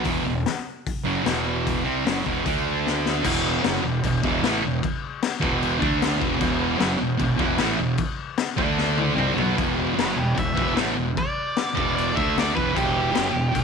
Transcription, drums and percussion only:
0.04 kick, open hi-hat
0.46 snare, open hi-hat
0.87 kick, open hi-hat
1.26 snare, open hi-hat
1.67 kick, open hi-hat
2.07 snare, open hi-hat
2.26 kick
2.46 kick, open hi-hat
2.87 snare
3.06 snare
3.25 kick, crash
3.64 snare, crash
4.04 kick, crash
4.24 kick
4.44 snare, crash
4.83 kick, crash
5.23 snare, crash
5.43 kick
5.63 crash
5.82 kick
6.02 snare, crash
6.22 kick
6.41 kick, crash
6.80 snare, crash
7.19 kick, crash
7.39 kick
7.58 snare, crash
7.98 kick, crash
8.38 snare, crash
8.58 kick
8.78 snare
8.97 high tom
9.18 mid tom
9.38 floor tom
9.58 kick, crash
9.99 snare, crash
10.37 kick, crash
10.57 kick
10.77 snare, crash
11.17 kick, crash
11.57 snare, crash
11.77 kick
11.98 crash
12.17 kick
12.38 snare, crash
12.57 kick
12.77 kick, crash
13.15 snare, crash
13.55 kick, crash

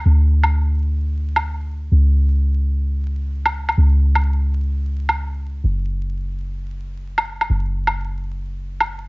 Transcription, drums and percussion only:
0.44 low woodblock
1.36 low woodblock
3.46 low woodblock
3.69 low woodblock
4.15 low woodblock
5.09 low woodblock
7.18 low woodblock
7.41 low woodblock
7.87 low woodblock
8.80 low woodblock

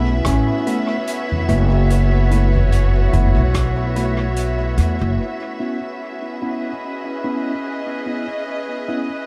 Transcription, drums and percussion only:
0.25 kick, cross-stick, closed hi-hat
0.67 closed hi-hat
1.07 closed hi-hat
1.32 mid tom
1.49 closed hi-hat
1.90 closed hi-hat
2.31 closed hi-hat
2.56 mid tom
2.72 closed hi-hat
3.13 closed hi-hat, mid tom
3.54 kick, cross-stick, closed hi-hat
3.96 closed hi-hat
4.36 closed hi-hat
4.78 closed hi-hat

